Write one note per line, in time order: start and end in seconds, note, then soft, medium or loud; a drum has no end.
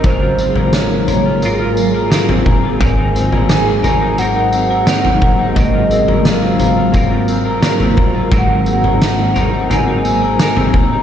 0.00 8.29 A#3 medium
0.00 0.39 C4 medium
0.00 0.12 D#4 medium
0.00 8.29 G#4 medium
0.00 0.43 A#4 medium
0.00 2.78 A#4 medium
0.00 floor tom loud
0.00 tambourine medium
0.04 1.43 G#2 medium
0.04 2.78 G#2 medium
0.04 1.41 G#2 medium
0.04 1.43 C#3 medium
0.04 2.78 F#3 medium
0.04 1.42 F#3 medium
0.04 2.78 F4 medium
0.04 0.75 C5 loud
0.04 kick loud
0.09 1.44 F4 medium
0.09 1.45 A#4 medium
0.23 0.73 F4 medium
0.38 1.11 C4 medium
0.38 tambourine medium
0.56 1.08 A#4 medium
0.56 floor tom medium
0.73 1.24 F4 medium
0.73 2.12 C#5 medium
0.73 snare loud
0.73 tambourine medium
1.08 1.94 A#4 medium
1.08 floor tom medium
1.08 tambourine medium
1.26 1.58 F4 medium
1.42 2.80 G#2 medium
1.42 2.10 F#3 medium
1.42 2.12 F4 medium
1.42 2.14 A#4 medium
1.42 tambourine medium
1.60 2.10 F4 medium
1.77 tambourine medium
1.94 2.45 A#4 medium
2.10 2.80 F#3 medium
2.10 2.80 C4 medium
2.10 2.62 F4 medium
2.10 2.81 F4 medium
2.10 2.81 A#4 medium
2.10 snare loud
2.10 tambourine medium
2.29 3.14 C4 medium
2.29 floor tom medium
2.46 3.18 A#4 medium
2.46 kick loud
2.46 floor tom medium
2.63 2.88 F4 medium
2.80 3.84 G#2 medium
2.80 4.17 G#2 medium
2.80 3.84 D#3 medium
2.80 3.87 F#3 medium
2.80 8.28 F#3 medium
2.80 3.86 C4 medium
2.80 3.83 D#4 medium
2.80 11.03 A#4 medium
2.80 3.83 A#4 medium
2.80 4.20 G#5 loud
2.80 kick loud
2.80 floor tom loud
2.80 tambourine medium
2.98 3.48 D#4 medium
3.15 3.66 C4 medium
3.15 tambourine medium
3.32 3.83 A#4 medium
3.32 floor tom medium
3.49 4.00 D#4 medium
3.49 snare loud
3.49 tambourine medium
3.66 4.53 C4 medium
3.83 4.17 F#3 medium
3.83 4.18 C4 soft
3.83 4.19 D#4 medium
3.83 4.18 A#4 medium
3.83 4.70 A#4 medium
3.83 floor tom medium
3.83 tambourine medium
4.01 4.34 D#4 medium
4.18 5.55 G#2 medium
4.18 4.86 F#3 medium
4.18 4.87 C4 medium
4.18 4.87 D#4 medium
4.18 4.89 A#4 medium
4.18 5.58 F#5 loud
4.18 tambourine medium
4.35 4.86 D#4 medium
4.53 5.04 C4 medium
4.53 tambourine medium
4.70 5.21 A#4 medium
4.86 5.57 F#3 medium
4.86 5.58 C4 medium
4.86 5.38 D#4 medium
4.86 5.57 D#4 medium
4.86 5.58 A#4 medium
4.86 snare loud
4.86 tambourine medium
5.04 5.90 C4 medium
5.04 floor tom medium
5.21 5.94 A#4 medium
5.21 kick loud
5.21 floor tom medium
5.39 5.63 D#4 medium
5.55 6.94 G#2 medium
5.55 6.93 G#2 medium
5.55 8.30 G#2 medium
5.55 6.94 C#3 medium
5.55 6.92 F#3 medium
5.55 6.94 C4 medium
5.55 8.30 F4 medium
5.55 6.25 D#5 loud
5.55 kick loud
5.55 floor tom loud
5.55 tambourine medium
5.59 6.94 F4 medium
5.59 6.96 A#4 medium
5.74 6.24 F4 medium
5.91 6.42 C4 medium
5.91 tambourine medium
6.08 6.59 A#4 medium
6.08 floor tom medium
6.25 6.75 F4 medium
6.25 7.60 F5 medium
6.25 snare loud
6.25 tambourine medium
6.42 7.27 C4 medium
6.59 7.45 A#4 medium
6.59 floor tom medium
6.59 tambourine medium
6.77 7.10 F4 medium
6.92 8.31 G#2 medium
6.92 7.62 F#3 medium
6.92 7.63 C4 medium
6.92 7.63 F4 medium
6.92 kick medium
6.92 floor tom medium
6.92 tambourine medium
6.97 7.65 A#4 medium
7.11 7.62 F4 medium
7.28 7.80 C4 medium
7.28 tambourine medium
7.45 7.97 A#4 medium
7.62 8.32 F#3 medium
7.62 8.32 C4 medium
7.62 8.13 F4 medium
7.62 8.33 F4 medium
7.62 8.34 A#4 medium
7.62 snare loud
7.62 tambourine medium
7.80 8.67 C4 medium
7.80 floor tom medium
7.97 8.70 A#4 medium
7.97 kick loud
7.97 floor tom medium
8.15 8.39 F4 medium
8.31 9.35 G#2 medium
8.31 9.70 G#2 medium
8.31 9.36 D#3 medium
8.31 9.37 F#3 medium
8.31 11.03 F#3 medium
8.31 11.03 A#3 medium
8.31 9.37 C4 medium
8.31 9.34 D#4 medium
8.31 11.03 G#4 medium
8.31 9.34 A#4 medium
8.31 kick loud
8.31 floor tom loud
8.31 tambourine medium
8.37 8.67 F#5 medium
8.50 9.00 D#4 medium
8.66 9.19 C4 medium
8.66 tambourine medium
8.71 9.68 F#5 loud
8.84 9.36 A#4 medium
8.84 floor tom medium
9.01 9.52 D#4 medium
9.01 snare loud
9.01 tambourine medium
9.19 10.05 C4 medium
9.34 9.68 F#3 soft
9.34 9.69 C4 soft
9.34 9.70 D#4 soft
9.34 9.70 A#4 soft
9.34 10.21 A#4 medium
9.34 floor tom medium
9.34 tambourine medium
9.53 9.87 D#4 medium
9.69 11.03 G#2 medium
9.69 10.39 F#3 medium
9.69 10.40 C4 medium
9.69 10.40 D#4 medium
9.69 10.42 A#4 medium
9.69 10.78 G#5 loud
9.69 floor tom medium
9.69 tambourine medium
9.88 10.38 D#4 medium
10.05 10.56 C4 medium
10.05 tambourine medium
10.22 10.73 A#4 medium
10.39 11.03 F#3 medium
10.39 11.03 C4 medium
10.39 10.90 D#4 medium
10.39 11.03 D#4 medium
10.39 11.03 A#4 medium
10.39 snare loud
10.39 tambourine medium
10.56 11.03 C4 medium
10.56 floor tom medium
10.74 11.03 A#4 medium
10.74 11.03 A#5 loud
10.74 kick loud
10.74 floor tom medium
10.91 11.03 D#4 medium